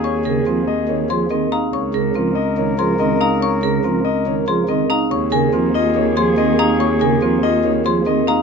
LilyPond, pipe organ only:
\new Staff \with { instrumentName = "Pipe organ" } { \clef bass \time 4/4 \key ees \mixolydian \tempo 4 = 142 r8 des8 f8 r8 ees8 f8 ees8 r8 | r8 des8 f8 r8 ees8 f8 ees8 r8 | r8 des8 f8 r8 ees8 f8 ees8 r8 | r8 des8 f8 r8 ees8 f8 ees8 r8 |
r8 des8 f8 r8 ees8 f8 ees8 r8 | }